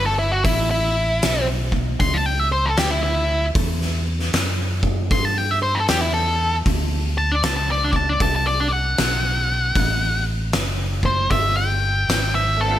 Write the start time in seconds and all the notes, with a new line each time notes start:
Already playing: G1
0.06 A4
0.19 E4
0.32 F#4
0.45 A1 E4, kick, open hi-hat
0.71 E4
1.22 B1, snare, open hi-hat
1.72 kick
2.00 C#2 C6, kick, open hi-hat
2.14 A5
2.26 G5
2.39 E5
2.52 C5
2.66 A4
2.77 D2 G4, snare, open hi-hat
2.91 E4
3.03 E4
3.55 E2, kick, open hi-hat
3.81 snare
4.20 snare
4.33 F#2, snare, open hi-hat
4.83 kick
5.11 G2 C6, kick, open hi-hat
5.25 A5
5.38 G5
5.51 E5
5.62 C5
5.75 A4
5.88 E2 G4, snare, open hi-hat
6.01 E4
6.14 A4
6.66 D2, kick, open hi-hat
7.18 A5
7.32 D5
7.43 C#2 A5, snare, open hi-hat
7.57 A5
7.71 D5
7.84 A5
7.93 A5, kick
8.09 D5
8.20 C2 A5, kick, open hi-hat
8.36 A5
8.47 D5
8.60 A5
8.72 F#5
8.98 B1, snare, open hi-hat
9.75 A1, kick, open hi-hat
10.53 F#1, snare, open hi-hat
11.03 C5, kick
11.30 G1 E5, kick, open hi-hat
11.56 G5
12.09 G#1, snare, open hi-hat
12.35 E5
12.57 A3 B3 A4
12.62 C4 D4
12.68 E4 F4
12.73 G4